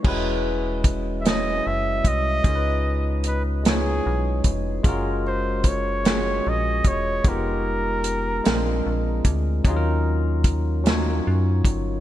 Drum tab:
CC |x-----|------|------|------|
HH |--xx-x|x-xx-x|x-xx-x|x-xx-x|
SD |---o--|---o--|---o--|---o--|
BD |o-o--o|o----o|o-o--o|o----o|

CC |------|
HH |x-xx-x|
SD |---o--|
BD |o-o--o|